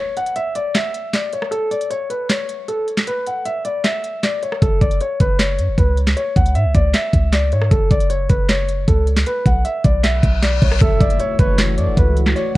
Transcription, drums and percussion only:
0.17 closed hi-hat
0.26 closed hi-hat
0.36 closed hi-hat
0.55 closed hi-hat
0.75 snare, clap, closed hi-hat
0.94 closed hi-hat
1.13 snare, clap, closed hi-hat
1.33 closed hi-hat
1.42 cross-stick
1.52 closed hi-hat
1.72 closed hi-hat
1.81 closed hi-hat
1.91 closed hi-hat
2.10 closed hi-hat
2.30 snare, clap, closed hi-hat
2.49 closed hi-hat
2.68 closed hi-hat
2.88 closed hi-hat
2.97 snare, clap
3.07 closed hi-hat
3.26 closed hi-hat
3.46 closed hi-hat
3.65 closed hi-hat
3.84 snare, clap, closed hi-hat
4.04 closed hi-hat
4.23 snare, clap, closed hi-hat
4.42 closed hi-hat
4.52 cross-stick
4.62 kick, closed hi-hat
4.81 kick, closed hi-hat
4.91 closed hi-hat
5.00 closed hi-hat
5.20 kick, closed hi-hat
5.39 snare, clap, closed hi-hat
5.59 closed hi-hat
5.78 kick, closed hi-hat
5.97 closed hi-hat
6.07 snare, clap
6.17 closed hi-hat
6.36 kick, closed hi-hat
6.46 closed hi-hat
6.55 closed hi-hat
6.75 kick, closed hi-hat
6.94 snare, clap, closed hi-hat
7.13 kick, closed hi-hat
7.33 snare, clap, closed hi-hat
7.52 closed hi-hat
7.62 cross-stick
7.71 kick, closed hi-hat
7.91 kick, closed hi-hat
8.00 closed hi-hat
8.10 closed hi-hat
8.29 kick, closed hi-hat
8.49 snare, clap, closed hi-hat
8.68 closed hi-hat
8.88 kick, closed hi-hat
9.07 closed hi-hat
9.17 snare, clap
9.26 closed hi-hat
9.46 kick, closed hi-hat
9.65 closed hi-hat
9.84 kick, closed hi-hat
10.04 snare, clap, closed hi-hat
10.23 kick, closed hi-hat
10.43 snare, clap, closed hi-hat
10.62 kick, closed hi-hat
10.72 cross-stick
10.81 kick, closed hi-hat
11.01 kick, closed hi-hat
11.10 closed hi-hat
11.20 closed hi-hat
11.39 kick, closed hi-hat
11.59 snare, clap, closed hi-hat
11.78 closed hi-hat
11.97 kick, closed hi-hat
12.17 closed hi-hat
12.26 snare, clap
12.36 closed hi-hat

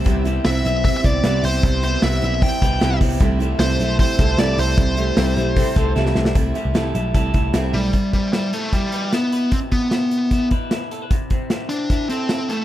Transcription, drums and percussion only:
0.06 kick, hi-hat pedal, open hi-hat
0.25 snare, hi-hat pedal, open hi-hat
0.45 snare, hi-hat pedal, open hi-hat
0.65 hi-hat pedal, open hi-hat
0.85 kick, hi-hat pedal, open hi-hat
1.04 kick, hi-hat pedal, open hi-hat
1.24 snare, hi-hat pedal, open hi-hat
1.44 hi-hat pedal, open hi-hat
1.63 kick, hi-hat pedal, open hi-hat
1.83 snare, hi-hat pedal, open hi-hat
2.02 snare, hi-hat pedal, open hi-hat
2.22 hi-hat pedal, open hi-hat
2.42 kick, hi-hat pedal, open hi-hat
2.62 kick, hi-hat pedal, open hi-hat
2.81 snare, hi-hat pedal, open hi-hat
3.01 kick, hi-hat pedal, open hi-hat
3.20 kick, hi-hat pedal, open hi-hat
3.40 hi-hat pedal, open hi-hat
3.60 snare, hi-hat pedal, open hi-hat
3.80 hi-hat pedal, open hi-hat
3.99 kick, hi-hat pedal, open hi-hat
4.18 kick, hi-hat pedal, open hi-hat
4.38 snare, hi-hat pedal, open hi-hat
4.58 hi-hat pedal, open hi-hat
4.78 kick, hi-hat pedal, open hi-hat
4.97 hi-hat pedal, open hi-hat
5.17 snare, hi-hat pedal, open hi-hat
5.37 hi-hat pedal, open hi-hat
5.57 kick, hi-hat pedal, open hi-hat
5.76 kick, hi-hat pedal, open hi-hat
5.96 snare
6.06 snare
6.15 snare
6.25 snare
6.35 kick, closed hi-hat
6.55 closed hi-hat
6.75 snare, closed hi-hat
6.95 closed hi-hat
7.15 kick, closed hi-hat
7.34 kick, closed hi-hat
7.54 snare, closed hi-hat
7.74 open hi-hat
7.93 kick, closed hi-hat
8.13 kick, snare, closed hi-hat
8.33 snare, closed hi-hat
8.53 closed hi-hat
8.73 kick, closed hi-hat
8.92 closed hi-hat
9.13 snare, closed hi-hat
9.32 closed hi-hat
9.52 kick, closed hi-hat
9.72 kick, snare, closed hi-hat
9.91 snare, closed hi-hat
10.11 closed hi-hat
10.31 kick, closed hi-hat
10.51 kick, closed hi-hat
10.71 snare, closed hi-hat
10.91 closed hi-hat
11.11 kick, closed hi-hat
11.30 kick, closed hi-hat
11.50 snare, closed hi-hat
11.70 closed hi-hat
11.90 kick, closed hi-hat
12.10 closed hi-hat
12.29 snare, closed hi-hat
12.50 closed hi-hat

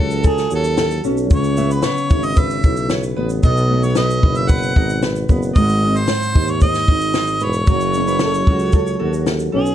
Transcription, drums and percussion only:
0.11 shaker
0.24 kick, shaker
0.38 snare, shaker
0.51 shaker
0.64 shaker
0.77 snare, shaker
0.91 shaker
1.04 shaker
1.17 shaker
1.30 kick, shaker
1.44 shaker
1.57 shaker
1.71 shaker
1.83 snare, shaker
1.97 shaker
2.10 kick, shaker
2.23 shaker
2.36 kick, shaker
2.50 shaker
2.63 kick, shaker
2.77 shaker
2.90 snare, shaker
3.03 shaker
3.29 shaker
3.43 kick, shaker
3.57 shaker
3.83 shaker
3.96 snare, shaker
4.10 shaker
4.23 kick
4.35 shaker
4.49 kick, shaker
4.63 shaker
4.76 kick
4.89 shaker
5.03 snare, shaker
5.16 shaker
5.29 kick, shaker
5.42 shaker
5.56 kick, shaker
5.69 shaker
5.96 shaker
6.08 snare, shaker
6.22 shaker
6.36 kick
6.48 shaker
6.61 kick, shaker
6.74 snare, shaker
6.88 kick
7.01 shaker
7.14 snare, shaker
7.27 shaker
7.40 shaker
7.53 shaker
7.67 kick, shaker
7.80 shaker
7.94 shaker
8.08 shaker
8.19 snare, shaker
8.34 shaker
8.47 kick
8.59 shaker
8.72 kick, shaker
8.87 shaker
9.13 shaker
9.27 snare, shaker
9.39 shaker
9.66 shaker

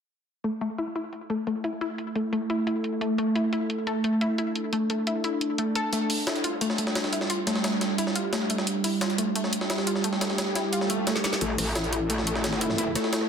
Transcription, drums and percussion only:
0.44 closed hi-hat
0.61 closed hi-hat
0.78 closed hi-hat
0.95 closed hi-hat
1.13 closed hi-hat
1.30 closed hi-hat
1.47 closed hi-hat
1.64 closed hi-hat
1.81 closed hi-hat
1.98 closed hi-hat
2.16 closed hi-hat
2.33 closed hi-hat
2.50 closed hi-hat
2.67 closed hi-hat
2.84 closed hi-hat
3.01 closed hi-hat
3.18 closed hi-hat
3.36 closed hi-hat
3.53 closed hi-hat
3.70 closed hi-hat
3.87 closed hi-hat
4.04 closed hi-hat
4.21 closed hi-hat
4.38 closed hi-hat
4.56 closed hi-hat
4.73 closed hi-hat
4.90 closed hi-hat
5.07 closed hi-hat
5.24 closed hi-hat
5.41 closed hi-hat
5.58 closed hi-hat
5.75 closed hi-hat
5.93 closed hi-hat
6.10 closed hi-hat, open hi-hat
6.27 snare, closed hi-hat
6.36 closed hi-hat
6.44 closed hi-hat
6.61 closed hi-hat
6.70 snare
6.78 closed hi-hat
6.87 snare
6.95 snare, closed hi-hat
7.04 snare
7.13 closed hi-hat
7.21 snare
7.30 closed hi-hat
7.47 snare, closed hi-hat
7.56 snare
7.64 snare, closed hi-hat
7.81 snare, closed hi-hat
7.98 closed hi-hat
8.07 snare
8.15 closed hi-hat
8.33 snare, closed hi-hat
8.50 closed hi-hat
8.58 snare
8.67 closed hi-hat
8.84 closed hi-hat, open hi-hat
9.01 snare, closed hi-hat
9.10 closed hi-hat
9.18 closed hi-hat
9.36 closed hi-hat
9.44 snare
9.53 closed hi-hat
9.61 snare
9.70 snare, closed hi-hat
9.78 snare
9.87 closed hi-hat
9.96 snare
10.04 closed hi-hat
10.13 snare
10.21 snare, closed hi-hat
10.30 snare
10.38 snare, closed hi-hat
10.55 snare, closed hi-hat
10.73 closed hi-hat
10.81 snare
10.90 closed hi-hat
11.07 snare, closed hi-hat
11.16 snare
11.24 snare, closed hi-hat
11.33 snare
11.41 closed hi-hat
11.58 cross-stick, closed hi-hat, open hi-hat
11.76 snare, closed hi-hat
11.84 closed hi-hat
11.93 closed hi-hat
12.10 closed hi-hat
12.18 snare
12.27 closed hi-hat
12.36 snare
12.44 snare, closed hi-hat
12.53 snare
12.61 closed hi-hat
12.70 snare
12.78 closed hi-hat
12.95 cross-stick, snare, closed hi-hat
13.04 snare
13.13 snare, closed hi-hat
13.21 cross-stick

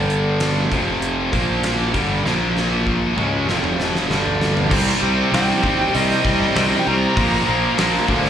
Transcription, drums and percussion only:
0.10 closed hi-hat
0.40 snare, closed hi-hat
0.72 kick, closed hi-hat
1.02 closed hi-hat
1.33 kick, closed hi-hat
1.63 snare, closed hi-hat
1.94 kick, snare, closed hi-hat
2.26 snare
2.57 snare
2.87 kick
3.18 mid tom
3.49 snare
3.64 mid tom
3.80 snare
3.95 snare
4.11 snare
4.26 floor tom
4.41 snare
4.57 floor tom
4.71 kick, crash
5.34 snare, open hi-hat
5.63 kick
5.95 open hi-hat
6.11 snare
6.25 kick
6.56 snare, open hi-hat
7.17 kick, open hi-hat
7.78 snare, open hi-hat
8.08 kick
8.24 snare

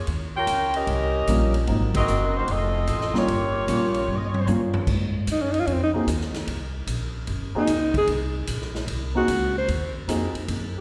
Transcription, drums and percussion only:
0.07 ride
0.47 hi-hat pedal, ride
0.74 ride
0.87 ride
1.27 hi-hat pedal, ride
1.54 ride
1.67 ride
1.94 kick, ride
2.08 hi-hat pedal
2.48 ride
2.87 hi-hat pedal, ride
3.01 snare
3.15 snare
3.28 ride
3.68 hi-hat pedal, ride
3.94 ride
4.08 high tom
4.34 high tom
4.47 floor tom, hi-hat pedal
4.74 floor tom
4.87 kick, crash
5.27 hi-hat pedal, ride
5.54 ride
5.67 ride
6.08 hi-hat pedal, ride
6.21 snare
6.34 snare, ride
6.47 ride
6.87 hi-hat pedal, ride
7.27 ride
7.67 hi-hat pedal, ride
7.94 kick, ride
8.07 ride
8.47 hi-hat pedal, ride
8.61 snare
8.75 snare
8.88 ride
9.28 hi-hat pedal, ride
9.68 ride
10.09 hi-hat pedal, ride
10.35 ride
10.48 ride

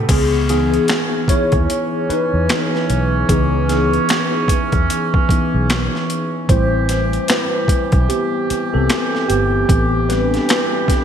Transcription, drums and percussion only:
0.09 kick, closed hi-hat, crash
0.49 snare, closed hi-hat
0.74 closed hi-hat
0.88 finger snap, snare, closed hi-hat
1.28 kick, closed hi-hat
1.52 kick, closed hi-hat
1.70 closed hi-hat
2.10 closed hi-hat
2.49 finger snap, snare, closed hi-hat
2.75 snare
2.90 closed hi-hat
3.29 kick, closed hi-hat
3.69 snare, closed hi-hat
3.93 closed hi-hat
4.09 finger snap, snare, closed hi-hat
4.48 kick, closed hi-hat
4.72 kick, closed hi-hat
4.90 closed hi-hat
5.14 kick
5.29 kick, closed hi-hat
5.70 finger snap, snare, closed hi-hat
5.95 snare
6.10 closed hi-hat
6.49 kick, closed hi-hat
6.89 snare, closed hi-hat
7.13 closed hi-hat
7.28 finger snap, snare, closed hi-hat
7.68 kick, closed hi-hat
7.92 kick, closed hi-hat
8.10 closed hi-hat
8.50 closed hi-hat
8.89 finger snap, snare, closed hi-hat
9.15 snare
9.30 closed hi-hat
9.69 kick, closed hi-hat
10.10 snare, closed hi-hat
10.34 snare, closed hi-hat
10.49 finger snap, snare, closed hi-hat
10.88 kick, snare, closed hi-hat

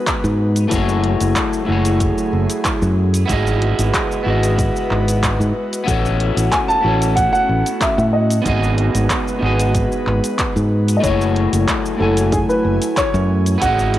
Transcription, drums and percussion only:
0.07 kick, clap, closed hi-hat, shaker
0.24 shaker
0.56 closed hi-hat, shaker
0.71 kick, closed hi-hat, shaker
0.89 shaker
1.04 closed hi-hat
1.20 closed hi-hat, shaker
1.36 kick, clap, closed hi-hat, shaker
1.53 shaker
1.85 closed hi-hat, shaker
2.00 kick, closed hi-hat, shaker
2.18 shaker
2.50 closed hi-hat, shaker
2.65 kick, clap, closed hi-hat, shaker
2.82 shaker
3.14 closed hi-hat, shaker
3.29 kick, closed hi-hat, shaker
3.47 shaker
3.62 closed hi-hat
3.79 closed hi-hat, shaker
3.94 kick, clap, closed hi-hat, shaker
4.12 shaker
4.43 closed hi-hat, shaker
4.58 kick, closed hi-hat, shaker
4.76 shaker
4.91 clap
5.08 closed hi-hat, shaker
5.23 kick, clap, closed hi-hat, shaker
5.41 shaker
5.73 closed hi-hat, shaker
5.88 kick, closed hi-hat, shaker
6.06 shaker
6.20 closed hi-hat
6.37 closed hi-hat, shaker
6.52 kick, clap, closed hi-hat, shaker
6.70 shaker
7.02 closed hi-hat, shaker
7.17 kick, closed hi-hat, shaker
7.35 shaker
7.66 closed hi-hat, shaker
7.81 kick, clap, closed hi-hat, shaker
7.99 shaker
8.30 closed hi-hat, shaker
8.46 kick, closed hi-hat, shaker
8.63 shaker
8.78 closed hi-hat
8.95 closed hi-hat, shaker
9.10 kick, clap, closed hi-hat, shaker
9.28 shaker
9.60 closed hi-hat, shaker
9.74 kick, closed hi-hat, shaker
9.92 shaker
10.07 clap
10.24 closed hi-hat, shaker
10.39 kick, clap, closed hi-hat, shaker
10.57 shaker
10.88 closed hi-hat, shaker
11.03 kick, closed hi-hat, shaker
11.21 shaker
11.36 closed hi-hat
11.53 closed hi-hat, shaker
11.68 kick, clap, closed hi-hat, shaker
11.86 shaker
12.17 closed hi-hat, shaker
12.32 kick, closed hi-hat, shaker
12.50 shaker
12.82 closed hi-hat, shaker
12.97 kick, clap, closed hi-hat, shaker
13.15 shaker
13.46 closed hi-hat, shaker
13.62 kick, closed hi-hat, shaker
13.79 shaker
13.94 closed hi-hat

